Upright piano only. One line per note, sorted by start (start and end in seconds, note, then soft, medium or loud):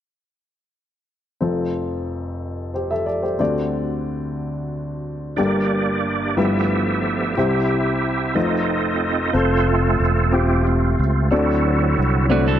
1.41 3.36 F1 soft
1.41 3.36 F2 soft
1.41 3.35 C4 soft
1.41 3.36 F4 soft
1.41 2.72 A4 soft
2.74 2.90 G4 soft
2.74 2.90 C5 soft
2.91 3.05 A4 soft
2.91 3.06 E5 soft
3.06 3.22 A4 soft
3.06 3.22 D5 soft
3.22 3.55 G4 soft
3.22 3.54 C5 soft
3.39 5.34 D2 soft
3.39 5.34 D3 soft
3.39 5.34 C4 soft
3.39 5.34 D4 soft
3.39 5.34 F#4 soft
3.39 5.34 A4 soft
3.39 5.34 D5 medium
5.37 6.33 G1 soft
5.37 6.33 G2 medium
5.37 6.36 D4 soft
5.37 6.36 G4 soft
5.37 5.45 A4 soft
5.45 6.41 A#4 medium
6.37 7.32 G1 soft
6.37 7.32 G2 soft
6.37 7.36 A3 soft
6.37 7.35 E4 soft
6.37 7.36 F4 soft
6.37 7.36 G4 soft
6.37 7.36 B4 medium
7.37 8.32 C2 soft
7.37 8.32 C3 soft
7.37 8.35 E4 medium
7.37 8.36 G4 soft
7.37 8.35 C5 medium
8.35 9.30 F1 soft
8.35 9.30 F2 soft
8.35 9.34 A3 soft
8.35 9.32 C4 soft
8.35 9.34 D#4 soft
8.35 9.32 F4 soft
8.35 9.34 C5 medium
9.33 10.01 C4 medium
9.33 10.01 F4 medium
9.33 10.01 A4 medium
10.32 10.99 C4 soft
10.32 11.00 F4 soft
10.32 11.00 G4 medium
11.31 12.26 D3 soft
11.31 11.98 C4 medium
11.31 11.98 D4 medium
11.31 11.98 F#4 medium
11.31 11.98 A4 medium
11.31 11.98 D5 medium
12.29 12.60 C4 medium
12.29 12.60 D4 medium
12.29 12.60 F#4 medium
12.29 12.60 A4 medium
12.29 12.60 D5 medium